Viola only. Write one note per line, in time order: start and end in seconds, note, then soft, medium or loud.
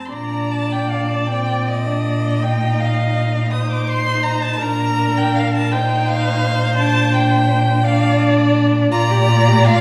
0.00 0.11 C4 medium
0.13 2.44 D5 medium
2.42 3.52 D#5 medium
3.51 4.60 C5 medium
4.61 5.74 A#4 medium
5.72 7.85 C5 medium
7.83 8.91 D5 medium
8.92 9.81 D5 loud